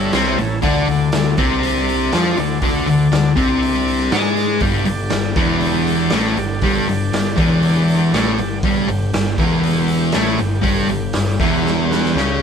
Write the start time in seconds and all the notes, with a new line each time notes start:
Already playing: G2 G3 E4 A4 C#5 E5
0.13 C2 C3 C4 G5, snare, open hi-hat
0.36 A1 A2 A5, open hi-hat
0.62 D2 D3 D4 D5, kick, open hi-hat
0.88 D2 D3, open hi-hat
1.12 D2 D3, snare, open hi-hat
1.37 C2 C3 C4, kick, open hi-hat
1.63 open hi-hat
1.89 open hi-hat
2.12 F2 F3 F4, snare, open hi-hat
2.37 D2 D3, open hi-hat
2.62 D2 D3 D4, kick, open hi-hat
2.87 D2 D3, open hi-hat
3.12 D2 D3, snare, open hi-hat
3.36 C2 C3 C4, kick, open hi-hat
3.63 open hi-hat
3.88 open hi-hat
4.00 snare
4.11 G#2 G#3 G#4, snare, open hi-hat
4.36 open hi-hat
4.60 G1 G2 G3 D4 G4 D5, kick, open hi-hat
4.85 G1 G2, open hi-hat
5.10 G1 G2, snare, open hi-hat
5.36 E1 E2 E3, kick, open hi-hat
5.61 open hi-hat
5.87 open hi-hat
6.10 A1 A2 A3, snare, open hi-hat
6.37 G1 G2, open hi-hat
6.61 G1 G2 G3, kick, open hi-hat
6.87 G1 G2, open hi-hat
7.12 G1 G2, snare, open hi-hat
7.36 E1 E2 E3, kick, open hi-hat
7.63 open hi-hat
7.88 open hi-hat
8.12 A1 A2 A3, snare, open hi-hat
8.38 G1 G2, open hi-hat
8.63 G1 G2 G3 G4, kick, open hi-hat
8.87 G1 G2, open hi-hat
9.13 G1 G2, snare, open hi-hat
9.38 E1 E2 E3, kick, open hi-hat
9.64 open hi-hat
9.88 open hi-hat
10.12 A1 A2 A3, snare, open hi-hat
10.38 G1 G2, open hi-hat
10.62 G1 G2 G3, kick, open hi-hat
10.89 G1 G2, open hi-hat
11.13 G1 G2, snare, open hi-hat
11.40 E1 E2 E3, kick, open hi-hat
11.66 snare
11.90 F#5, snare
12.04 snare
12.14 C#2 C#3 G5, snare
12.18 C#4